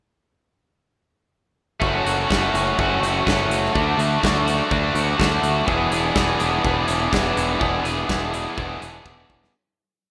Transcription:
1.80 2.00 F#1 medium
1.80 2.29 A3 medium
1.80 2.06 C#4 medium
1.80 2.04 F#4 medium
1.80 kick loud
2.05 2.24 F#1 medium
2.05 2.29 C#4 medium
2.05 2.31 F#4 medium
2.05 closed hi-hat medium
2.29 2.49 F#1 medium
2.29 2.77 A3 medium
2.29 2.55 C#4 medium
2.29 2.52 F#4 medium
2.29 kick loud
2.29 snare loud
2.53 2.72 F#1 medium
2.53 2.78 C#4 medium
2.53 2.79 F#4 medium
2.53 closed hi-hat loud
2.77 2.97 F#1 medium
2.77 3.24 A3 medium
2.77 3.02 C#4 medium
2.77 2.99 F#4 loud
2.77 kick loud
3.01 3.20 F#1 medium
3.01 3.25 C#4 medium
3.01 3.26 F#4 medium
3.01 closed hi-hat medium
3.25 3.45 F#1 medium
3.25 3.73 A3 medium
3.25 3.73 C#4 medium
3.25 3.74 F#4 medium
3.25 kick loud
3.25 snare loud
3.49 3.68 F#1 medium
3.49 closed hi-hat medium
3.65 snare soft
3.74 3.93 D2 medium
3.74 4.20 A3 medium
3.74 4.00 D4 loud
3.74 3.96 F#4 loud
3.74 kick loud
3.98 4.16 D2 medium
3.98 4.22 D4 medium
3.98 4.23 F#4 medium
3.98 closed hi-hat medium
4.21 4.60 D2 medium
4.21 4.68 A3 medium
4.21 4.49 D4 medium
4.21 4.45 F#4 medium
4.21 kick loud
4.21 snare loud
4.46 4.71 D4 medium
4.46 4.71 F#4 medium
4.46 closed hi-hat medium
4.69 4.89 D2 medium
4.69 5.16 A3 medium
4.69 4.95 D4 medium
4.69 4.92 F#4 loud
4.69 kick loud
4.93 5.13 D2 medium
4.93 5.18 D4 medium
4.93 5.19 F#4 medium
4.93 closed hi-hat medium
5.18 5.38 D2 medium
5.18 5.65 A3 medium
5.18 5.67 D4 medium
5.18 5.67 F#4 medium
5.18 kick loud
5.18 snare loud
5.43 5.61 D2 medium
5.43 closed hi-hat medium
5.65 5.86 E1 loud
5.65 6.14 E3 medium
5.65 5.92 B3 loud
5.65 5.91 D4 medium
5.65 5.89 G#4 loud
5.65 kick loud
5.90 6.10 E1 medium
5.90 6.15 B3 medium
5.90 6.16 D4 medium
5.90 6.17 G#4 medium
5.90 closed hi-hat medium
6.15 6.34 E1 medium
6.15 6.62 E3 medium
6.15 6.41 B3 medium
6.15 6.39 D4 medium
6.15 6.38 G#4 medium
6.15 kick loud
6.15 snare loud
6.38 6.58 E1 medium
6.38 6.63 B3 medium
6.38 6.64 D4 medium
6.38 6.65 G#4 medium
6.38 closed hi-hat medium
6.62 6.83 E1 medium
6.62 7.10 E3 medium
6.62 6.88 B3 loud
6.62 6.87 D4 loud
6.62 6.86 G#4 medium
6.62 kick loud
6.86 7.07 E1 medium
6.86 7.11 B3 medium
6.86 7.13 D4 medium
6.86 7.13 G#4 medium
6.86 closed hi-hat loud
7.11 7.31 E1 medium
7.11 7.58 E3 medium
7.11 7.59 B3 medium
7.11 7.60 D4 medium
7.11 7.61 G#4 medium
7.11 kick loud
7.11 snare loud
7.37 7.55 E1 medium
7.37 closed hi-hat medium
7.59 7.79 E1 medium
7.59 8.06 E3 medium
7.59 7.85 B3 loud
7.59 7.84 D4 loud
7.59 7.82 G#4 loud
7.59 kick loud
7.83 8.03 E1 medium
7.83 8.07 B3 medium
7.83 8.08 D4 medium
7.83 8.09 G#4 medium
7.83 closed hi-hat medium
8.07 8.45 E1 loud
8.07 8.54 E3 medium
8.07 8.34 B3 medium
8.07 8.33 D4 medium
8.07 8.31 G#4 medium
8.07 kick loud
8.07 snare loud
8.32 8.56 B3 medium
8.32 8.57 D4 medium
8.32 8.57 G#4 medium
8.32 closed hi-hat loud
8.56 8.76 E1 medium
8.56 9.03 E3 medium
8.56 8.83 B3 loud
8.56 8.82 D4 loud
8.56 8.80 G#4 loud
8.56 kick loud
8.81 9.00 E1 medium
8.81 9.04 B3 medium
8.81 9.05 D4 medium
8.81 9.06 G#4 medium
8.81 closed hi-hat medium
9.04 9.23 E1 loud
9.04 9.51 E3 medium
9.04 9.52 B3 medium
9.04 9.52 D4 medium
9.04 9.53 G#4 medium
9.04 kick loud
9.30 9.48 E1 medium
9.30 kick medium
9.44 snare medium

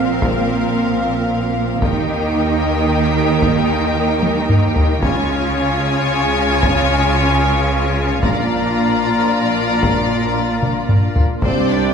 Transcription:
0.00 1.79 A#1 soft
0.00 1.79 A#2 medium
0.00 4.99 A#3 medium
0.00 1.79 C4 soft
0.00 1.79 C4 medium
0.00 1.79 F4 medium
0.00 1.79 A#4 soft
0.00 1.79 F5 medium
0.22 taiko medium
1.82 5.03 D#2 medium
1.82 5.03 D#3 medium
1.82 5.02 D#4 medium
1.82 4.99 D#4 medium
1.82 5.03 G4 medium
1.82 4.99 A#4 medium
1.82 5.03 D#5 medium
1.82 4.99 G5 medium
1.82 taiko medium
3.42 taiko medium
4.23 taiko high medium
4.49 taiko low-mid medium
4.76 taiko low medium
5.02 8.19 C#2 medium
5.02 8.19 C#3 medium
5.02 8.22 G#3 medium
5.02 8.22 C#4 medium
5.02 11.42 F4 medium
5.02 8.19 F4 medium
5.02 8.19 C#5 medium
5.02 11.42 F5 medium
5.02 8.19 G#5 medium
5.02 taiko medium
6.63 taiko medium
8.23 11.23 A#1 medium
8.23 11.23 A#2 medium
8.23 11.43 A#3 medium
8.23 11.42 D4 medium
8.23 11.19 F4 medium
8.23 11.19 D5 medium
8.23 11.19 A#5 medium
8.23 taiko medium
9.83 taiko medium
10.62 taiko mid medium
10.89 taiko low-mid medium
11.16 taiko low medium
11.42 11.94 C2 medium
11.42 11.94 C3 medium
11.42 11.94 G3 medium
11.42 11.67 C4 soft
11.42 11.94 C4 medium
11.42 11.94 D4 medium
11.42 11.94 G4 medium
11.42 11.67 C5 soft
11.42 11.94 C5 medium
11.42 11.68 D5 medium
11.42 taiko medium
11.69 11.94 D4 soft
11.69 11.94 D5 soft
11.69 11.94 G5 soft

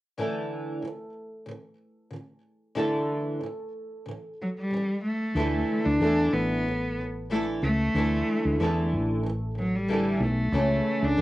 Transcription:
0.18 0.82 D3 medium
0.18 0.84 E3 medium
0.18 2.76 A3 medium
0.18 0.85 E4 medium
0.18 2.76 A4 medium
0.82 1.09 D3 soft
0.82 1.10 E3 medium
1.46 1.73 D3 medium
1.46 1.75 E3 medium
2.11 2.38 D3 soft
2.11 2.40 E3 soft
2.75 3.40 D3 medium
2.75 3.43 E3 medium
2.75 5.36 A3 medium
2.75 3.44 E4 medium
2.75 5.37 A4 medium
3.41 3.68 D3 soft
3.41 3.69 E3 medium
4.06 4.33 D3 soft
4.06 4.34 E3 medium
4.42 4.49 F#3 medium
4.59 5.02 G3 medium
4.70 4.98 D3 soft
4.70 4.99 E3 medium
5.04 5.86 A3 medium
5.35 5.62 D2 medium
5.35 5.99 D3 medium
5.35 6.00 E3 medium
5.35 6.01 A3 medium
5.35 6.01 E4 medium
5.35 6.02 A4 medium
5.85 5.98 D2 medium
5.85 6.35 D4 medium
6.00 6.27 E2 medium
6.00 6.64 D3 medium
6.00 6.68 E3 medium
6.00 7.31 A3 medium
6.00 6.68 E4 medium
6.00 7.32 A4 medium
6.33 7.59 A1 medium
6.33 6.98 B3 medium
6.65 6.92 D3 medium
6.65 6.93 E3 medium
6.98 7.25 D3 soft
6.98 7.26 E3 soft
7.30 7.61 D3 medium
7.30 7.63 E3 medium
7.30 7.63 A3 medium
7.30 7.46 A3 medium
7.30 7.63 E4 medium
7.30 7.64 A4 medium
7.62 7.89 C#2 medium
7.62 7.89 D3 soft
7.62 7.90 E3 soft
7.62 8.88 A3 medium
7.94 8.21 D2 medium
7.94 8.59 D3 medium
7.94 8.60 E3 medium
7.94 8.61 A3 medium
7.94 8.61 E4 medium
7.94 8.62 A4 medium
8.45 8.57 D2 medium
8.60 8.94 E2 medium
8.60 9.22 D3 medium
8.60 9.26 E3 medium
8.60 9.89 A3 medium
8.60 9.26 E4 medium
8.60 9.90 A4 medium
8.93 10.18 A1 medium
9.23 9.50 D3 medium
9.23 9.52 E3 medium
9.55 9.82 D3 soft
9.55 9.84 E3 soft
9.55 9.77 F#3 medium
9.76 10.24 G3 medium
9.88 10.19 D3 medium
9.88 10.21 E3 medium
9.88 10.22 A3 medium
9.88 10.22 E4 medium
9.88 10.22 A4 medium
10.20 10.47 B1 medium
10.20 10.47 D3 soft
10.20 10.49 E3 medium
10.20 11.06 A3 medium
10.52 10.79 C#2 medium
10.52 11.18 C#3 medium
10.52 11.17 E3 medium
10.52 11.17 A3 medium
10.52 11.19 C#4 medium
10.52 11.17 A4 medium
11.02 11.15 C#2 medium
11.02 11.22 D4 medium
11.17 11.22 E2 medium
11.17 11.22 E3 medium
11.17 11.22 A3 medium

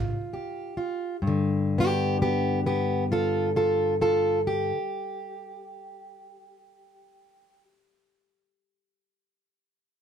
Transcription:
0.00 0.68 G2 medium
0.00 0.76 F4 soft
0.33 1.16 G4 soft
0.77 1.16 F4 soft
1.22 4.72 G2 medium
1.27 4.77 D3 medium
1.78 2.17 B3 medium
1.78 2.17 G4 medium
2.22 2.59 B3 medium
2.22 2.60 G4 medium
2.66 3.04 B3 medium
2.66 3.06 G4 medium
3.12 3.49 F4 medium
3.12 3.51 A4 medium
3.56 3.94 F4 medium
3.56 3.96 A4 medium
4.01 4.39 F4 medium
4.01 4.41 A4 medium
4.47 7.63 G4 medium

